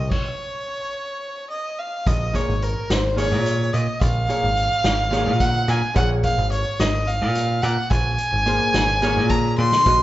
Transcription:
Already playing: C2 D#5
0.11 C#5, kick, crash
1.50 D#5
1.79 F5
2.06 A#1 D#5, kick, closed hi-hat
2.33 A#2 A#3 G#4 C#5, kick, closed hi-hat
2.48 G#1
2.62 A#4, closed hi-hat
2.90 G#1 C5, snare, closed hi-hat
3.16 A#2 A#3 G#4 C#5, snare, closed hi-hat
3.32 A#2
3.46 closed hi-hat
3.74 A#2 D#5, closed hi-hat
4.01 A#1 F5, kick, closed hi-hat
4.29 A#2 A#3 G#4 C#5, closed hi-hat
4.43 G#1
4.57 closed hi-hat
4.84 G#1, snare, closed hi-hat
5.11 A#2 A#3 G#4 C#5, snare, closed hi-hat
5.26 A#2
5.40 F#5, kick, snare, closed hi-hat
5.68 A#2 G#5, snare, closed hi-hat
5.94 A#1 A#2 A#3 G#4 C#5 F#5, kick, closed hi-hat
6.23 F5, kick, closed hi-hat
6.38 G#1
6.51 C#5, closed hi-hat
6.80 G#1 D#5, snare, closed hi-hat
7.08 F5, closed hi-hat
7.22 A#2
7.35 closed hi-hat
7.62 A#2 F#5, closed hi-hat
7.91 A#1 G#5, kick, closed hi-hat
8.18 closed hi-hat
8.32 G#1
8.46 A#2 A#3 G#4 C5, closed hi-hat
8.74 G#1, snare, closed hi-hat
9.02 A#2 A#3 G#4 C#5, snare, closed hi-hat
9.17 A#2
9.30 A#5, kick, closed hi-hat
9.58 A#2 C6, high tom
9.72 snare
9.86 A#1 A#2 A#3 F#4 D#5, kick, closed hi-hat

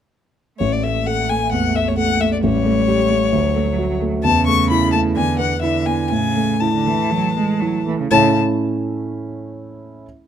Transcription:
0.59 A1 A3 C#5
0.72 D5
0.83 A3 E5
1.06 A4 F#5
1.29 A3 G#5
1.52 E2 F#5
1.74 A3 E5
1.88 C#5
1.97 A4 F#5
2.20 A3 E5
2.32 D5
2.43 A1 G3 C#5
2.65 A3
2.88 G4
3.10 A3
3.33 D2 F#3
3.55 A3
3.78 F#4
4.02 A3
4.23 E2 C#3 A5
4.46 A3 C#6
4.70 E4 B5
4.92 A3 A5
5.15 E2 D3 G#5
5.39 B3 F#5
5.60 D3 E4 E5
5.86 B3 G#5
6.10 A2 C#3 G#5
6.37 A3
6.60 C#3 E4 A5
6.73 D3
6.86 E3 A3
7.10 E3 F#3
7.36 G#3 A3
7.60 F#3 E4
7.87 E3 A3
8.00 C#3
8.11 A2 C#3 A3 C#4 E4 C#5 A5

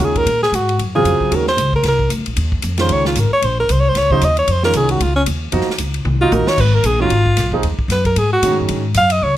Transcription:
Already playing: D#3 G#3 C#4 F4
0.00 D#2
0.04 G#4
0.16 A#4, kick, ride
0.26 A#2, ride
0.43 G#4, snare
0.52 G#2 F#4, hi-hat pedal, ride
0.69 ride
0.79 F#2, ride
0.95 C#3 F#3 C4 F4 G#4
1.04 F2, hi-hat pedal, ride
1.20 muted upright bass stroke, kick
1.31 D#2 D#3 G#3 C#4 F#4, ride
1.36 A#4
1.47 C5, snare
1.57 C#2, hi-hat pedal, ride
1.73 A#4, kick
1.83 C2, snare, ride
1.88 A#4
1.99 kick
2.09 D2, hi-hat pedal, ride
2.18 C#2
2.26 A#1, ride
2.36 D#2, ride
2.52 kick
2.62 F2, hi-hat pedal, ride
2.78 D#3 G#3 C#4 F4 C5, snare, ride
2.89 C#2 C#5, ride
3.05 F4, snare
3.15 G#1, hi-hat pedal, ride
3.20 A#4
3.32 C#5, muted upright bass stroke
3.42 A#1 C5, ride
3.60 A#4
3.69 C2 C5, hi-hat pedal, ride
3.80 C#5
3.89 C5
3.95 C#2 C#5, snare, ride
4.11 C#3 F#3 C4 D#4 C5, kick
4.21 D#2 D#5, hi-hat pedal, ride
4.37 C#5, ride
4.48 F2, ride
4.52 C5
4.63 D#3 G#3 C#4 F4 A#4, snare
4.73 C2 G#4, hi-hat pedal, ride
4.89 F#4, ride
5.00 C#2 F4, ride
5.16 C#4
5.26 D#2, hi-hat pedal, ride
5.52 F2 F3 A#3 D#4 F#4, ride
5.61 snare
5.68 muted upright bass stroke, snare
5.78 C#2, hi-hat pedal, ride
5.94 ride
6.05 C2, mid tom
6.21 A#3 D#4 F4 F#4
6.31 A#1 A#4, hi-hat pedal, mid tom
6.47 C#5, muted upright bass stroke, snare
6.57 G#1 B4, kick, crash
6.75 A#4
6.84 A#1 G#4, hi-hat pedal, ride
6.99 D#3 G#3 C#4 F4 F#4
7.10 G#1, ride
7.26 kick
7.37 B1, snare, hi-hat pedal, ride
7.52 F3 A#3 D#4 G#4, kick
7.63 D#2, ride
7.79 muted upright bass stroke, kick
7.88 F#2 B4, snare, hi-hat pedal, ride
8.05 A#4, kick, ride
8.16 G#2 G#4, ride
8.33 F#4
8.42 A#2 D#3 G#3 C#4 F#4, hi-hat pedal, ride
8.51 G#2
8.60 F#2
8.69 G#2, ride
8.94 F#2 F5, hi-hat pedal, ride
9.10 D#5, ride
9.21 C#2 C#5

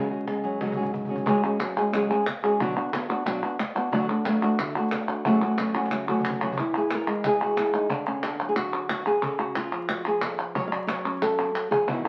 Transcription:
Already playing: C#3 G#3 C#4
0.10 C#4 F#4 G#4
0.27 G#3, muted nylon-string guitar stroke, cajon slap
0.43 F#3 C#4 F#4 G#4
0.61 C#3 F#3 G#3 C#4 F#4 G#4, cajon slap
0.72 cajon bass
0.77 G#2 C#4 F#4 G#4
0.83 cajon bass
0.93 muted nylon-string guitar stroke, cajon bass
1.05 G#4, cajon bass
1.10 C#4 F#4
1.16 cajon bass
1.26 C#3 F#3 G#3 C#4 F#4 G#4, cajon bass
1.43 G#3 C#4 F#4 G#4
1.60 F#3 C#4 F#4 G#4, muted nylon-string guitar stroke, cajon slap, clap
1.77 G#3 C#4 F#4 G#4, clap
1.93 C#3 F#3 G#3 C#4 G#4, muted nylon-string guitar stroke, cajon bass, cajon slap, clap
2.09 G#3 C#4 G#4, cajon slap, clap
2.26 muted nylon-string guitar stroke, cajon bass, cajon slap, clap
2.44 G#3 C#4 F#4 G#4, clap
2.60 B2 D3 F#3 B3 D4 F#4, cajon bass
2.76 B3 D4 F#4
2.92 D3 B3 D4 F#4, muted nylon-string guitar stroke, cajon slap, clap
3.10 B3 D4 F#4, cajon slap, clap
3.25 B2 F#3 B3 D4 F#4, muted nylon-string guitar stroke, cajon bass, cajon slap, clap
3.43 B3 D4 F#4, clap
3.59 muted nylon-string guitar stroke, cajon bass, cajon slap, clap
3.75 B3 D4 F#4, clap
3.92 D3 F#3 A3 D4 F#4, cajon bass
4.09 A3 D4 F#4
4.25 F#3 A3 D4 F#4, muted nylon-string guitar stroke, cajon slap, clap
4.42 A3 D4 F#4, cajon slap, clap
4.59 D3 A3 D4 F#4, muted nylon-string guitar stroke, cajon bass, cajon slap, clap
4.75 A3 D4 F#4, clap
4.91 muted nylon-string guitar stroke, cajon bass, cajon slap, clap
5.08 A3 D4 F#4, clap
5.25 F#2 C#3 F#3 A3 C#4 F#4, cajon bass
5.42 F#3 A3 C#4 F#4
5.58 F#3 A3 C#4 F#4, muted nylon-string guitar stroke, cajon slap, clap
5.74 F#3 A3 C#4 F#4, cajon slap, clap
5.86 cajon slap
5.90 F#2 C#3 F#3 A3 C#4 F#4, muted nylon-string guitar stroke, clap
6.08 F#3 A3 C#4 F#4, cajon bass, clap
6.20 cajon bass
6.24 muted nylon-string guitar stroke, clap
6.30 cajon bass
6.41 F#3 A3 C#4 F#4, cajon bass
6.52 cajon bass
6.57 E3 E4, cajon bass
6.77 G#4
6.90 cajon slap, clap
6.95 A#4
7.07 G#3, clap
7.24 G#4, cajon bass, clap
7.40 F#4, cajon slap, clap
7.57 E4, cajon bass, cajon slap, clap
7.74 D#4, clap
7.90 D3 D4, cajon bass
8.08 C#4
8.23 D4, cajon slap, clap
8.40 F#3, clap
8.49 G#4
8.56 F#4, cajon bass, cajon slap, clap
8.73 cajon slap, clap
8.89 F#4, cajon bass, cajon slap, clap
9.06 G#4, clap
9.22 C#3 A4, cajon bass
9.39 F#4
9.55 F4, cajon slap, clap
9.72 F3, clap
9.89 F#4, cajon bass, cajon slap, clap
10.05 G#4, cajon slap, clap
10.21 A4, cajon bass, cajon slap, clap
10.39 B4
10.55 F#3 C#5, cajon bass
10.67 F5
10.72 D5
10.87 C#5, cajon slap, clap
11.05 C#4, cajon slap, clap
11.22 A4, cajon bass, cajon slap, clap
11.39 cajon slap
11.54 F#3, clap
11.71 F3 G#4, cajon bass
11.87 E2 B2 D#3 E3 G#3 B3 D#4 E4 F#4, cajon bass
12.04 G#3 B3 E4 A#4

